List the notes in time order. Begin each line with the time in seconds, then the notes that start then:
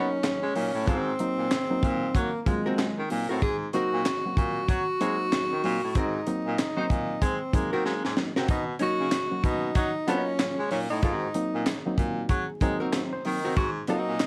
Already playing: F#3 A#3 C#4 D#4 A#4 C#5
0.23 snare, clap, closed hi-hat
0.43 G#3
0.55 A#2 F#3 A#3 C#4 D#4, open hi-hat
0.74 A2 C#4 F#4
0.86 G#2 C4 F#4 A#4, kick, closed hi-hat
0.91 C4
1.19 F#3 A#3 C4 D#4, closed hi-hat
1.38 A#2
1.51 snare, clap, closed hi-hat
1.70 F#3 A#3 C4 D#4
1.83 A#2, kick, closed hi-hat
2.15 F#3 A#3, kick, closed hi-hat
2.42 A#3
2.46 F#3 G#3 A#3 C4 F4, kick, closed hi-hat
2.66 C4 F#4 A#4
2.78 snare, clap, closed hi-hat
2.98 D#3
3.10 A#2 F#3 A#3 C4 D#4, open hi-hat
3.29 A2 C4 D#4 F#4 A#4
3.42 G#2 G#4, kick, closed hi-hat
3.73 F#3 A#3 C4 D#4 F#4 A#4, closed hi-hat
3.93 A#2
4.05 snare, clap, closed hi-hat
4.25 F#3 A#3 C4 F#4
4.37 A#2 F#4, kick, closed hi-hat
4.68 F#3, kick, closed hi-hat
5.01 F#3 G#3 A#3 C4 D#4 F#4 A#4, closed hi-hat
5.32 snare, clap, closed hi-hat
5.52 D#3
5.64 A#2 F#3 A#3 C4 D#4, open hi-hat
5.83 A2 F#4
5.90 F#4
5.95 G#2 C4 D#4 F#4 A#4, kick, closed hi-hat
6.27 F#3 A#3 C4 D#4, closed hi-hat
6.47 A#2
6.58 snare, clap, closed hi-hat
6.76 F#3 A#3 C4 D#4 F#4 C5
6.90 A#2, kick, closed hi-hat
7.22 G#3 C4, kick, closed hi-hat
7.53 F#3 G#3 A#3 C4 D#4, kick, closed hi-hat
7.73 D#3 C4 F#4 A#4
7.85 G#3, snare
8.04 G#2, snare
8.17 F#3 A#3 C4 D#4, snare
8.36 C3 C4 F#4 A#4, snare
8.48 B2 D#4, kick, closed hi-hat
8.79 F#3 A#3 C#4 D#4 F#4 A#4, closed hi-hat
9.00 C#3
9.11 snare, clap, closed hi-hat
9.31 F#3 A#3 C#4 F#4
9.44 B2 D#4, kick, closed hi-hat
9.75 F#3 D#4, kick, closed hi-hat
10.07 F#3 A#3 B3 C#4 D#4 F4 A#4, closed hi-hat
10.39 snare, clap, closed hi-hat
10.59 G#3
10.71 A#2 F#3 A#3 C#4 D#4, open hi-hat
10.90 A2 C#4 D#4
11.02 G#2 C4 F#4 A#4, kick, closed hi-hat
11.34 F#3 A#3 C4 D#4, closed hi-hat
11.55 A#2
11.66 snare, clap, closed hi-hat
11.86 F#3 A#3 C4 D#4
11.98 A#2 F#4, kick, closed hi-hat
12.29 F#3 G#4, kick, closed hi-hat
12.61 F#3 G#3 A#3 C4 D#4 A#4, kick, closed hi-hat
12.80 C4 F#4 A#4
12.93 C5, snare, clap, closed hi-hat
13.13 C5
13.25 D#3 F#3 A#3 C4 D#4 D#5, open hi-hat
13.44 C4 D#4 F#4 A#4
13.57 G#2 F#4, kick, closed hi-hat
13.87 F#3 A#3 C4 D#4 F#4 A#4, closed hi-hat
14.08 A#2
14.19 snare, clap, closed hi-hat